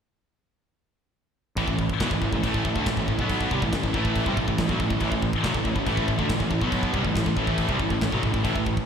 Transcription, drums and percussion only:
1.57 kick medium
1.57 crash medium
1.68 kick medium
1.79 kick medium
1.90 kick medium
2.00 kick medium
2.00 snare loud
2.00 crash medium
2.11 kick medium
2.22 kick medium
2.33 kick medium
2.44 kick medium
2.44 crash medium
2.54 kick medium
2.65 kick medium
2.76 kick medium
2.86 kick medium
2.86 snare loud
2.86 crash medium
2.97 kick medium
3.08 kick medium
3.19 kick medium
3.29 kick medium
3.29 crash medium
3.41 kick medium
3.51 kick medium
3.62 kick medium
3.73 kick medium
3.73 snare loud
3.73 crash medium
3.84 kick medium
3.94 kick medium
4.05 kick medium
4.16 kick medium
4.16 crash medium
4.26 kick medium
4.37 kick medium
4.48 kick medium
4.58 kick medium
4.58 snare loud
4.58 crash medium
4.69 kick medium
4.80 kick medium
4.90 kick medium
5.00 kick medium
5.00 crash medium
5.12 kick medium
5.22 kick medium
5.33 kick medium
5.44 kick medium
5.44 snare loud
5.44 crash medium
5.54 kick medium
5.65 kick medium
5.76 kick medium
5.86 kick medium
5.86 crash medium
5.97 kick medium
6.08 kick medium
6.19 kick medium
6.30 kick medium
6.30 snare loud
6.30 crash medium
6.40 kick medium
6.51 kick medium
6.61 kick medium
6.72 kick medium
6.72 crash medium
6.83 kick medium
6.94 kick medium
7.05 kick medium
7.15 kick medium
7.15 snare loud
7.15 crash medium
7.26 kick medium
7.37 kick medium
7.47 kick medium
7.58 kick medium
7.58 crash medium
7.69 kick medium
7.80 kick medium
7.90 kick medium
8.01 kick medium
8.01 snare loud
8.01 crash medium
8.12 kick medium
8.23 kick medium
8.34 kick medium
8.45 kick medium
8.45 crash medium
8.56 kick medium
8.66 kick medium
8.77 kick medium

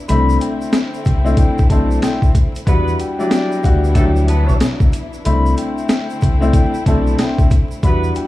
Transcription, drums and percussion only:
0.09 closed hi-hat loud
0.09 shaker medium
0.29 shaker medium
0.41 closed hi-hat medium
0.41 shaker soft
0.61 shaker medium
0.73 snare loud
0.73 closed hi-hat medium
0.73 shaker medium
0.94 shaker medium
1.05 kick medium
1.05 closed hi-hat medium
1.05 shaker medium
1.26 shaker medium
1.37 kick loud
1.37 closed hi-hat loud
1.37 shaker medium
1.58 kick loud
1.58 shaker medium
1.70 kick loud
1.70 closed hi-hat medium
1.70 shaker medium
1.91 shaker medium
2.02 snare loud
2.02 closed hi-hat loud
2.02 shaker medium
2.22 kick loud
2.22 shaker medium
2.35 kick loud
2.35 closed hi-hat medium
2.35 shaker medium
2.55 closed hi-hat medium
2.55 shaker medium
2.67 kick loud
2.67 closed hi-hat loud
2.67 shaker medium
2.88 shaker medium
2.99 closed hi-hat medium
2.99 shaker soft
3.20 shaker medium
3.31 snare loud
3.31 closed hi-hat medium
3.31 shaker medium
3.52 shaker medium
3.63 kick medium
3.63 closed hi-hat medium
3.63 shaker medium
3.84 shaker medium
3.95 kick loud
3.95 closed hi-hat loud
3.95 shaker medium
4.16 shaker medium
4.28 closed hi-hat medium
4.28 shaker medium
4.49 shaker medium
4.60 snare loud
4.60 closed hi-hat loud
4.60 shaker medium
4.80 kick medium
4.80 shaker soft
4.93 closed hi-hat medium
4.93 shaker medium
5.13 shaker medium
5.25 closed hi-hat loud
5.25 shaker medium
5.46 shaker medium
5.57 closed hi-hat medium
5.57 shaker soft
5.78 shaker medium
5.89 snare loud
5.89 closed hi-hat loud
5.89 shaker medium
6.10 shaker medium
6.21 kick medium
6.21 closed hi-hat medium
6.21 shaker medium
6.42 shaker medium
6.53 kick loud
6.53 closed hi-hat loud
6.53 shaker medium
6.74 shaker medium
6.86 kick loud
6.86 closed hi-hat medium
6.86 shaker medium
7.07 shaker medium
7.19 snare loud
7.19 closed hi-hat loud
7.19 shaker medium
7.38 kick loud
7.38 shaker soft
7.51 kick loud
7.51 closed hi-hat medium
7.51 shaker medium
7.71 shaker medium
7.83 kick loud
7.83 closed hi-hat loud
7.83 shaker medium
8.04 shaker medium
8.15 closed hi-hat medium
8.15 shaker soft

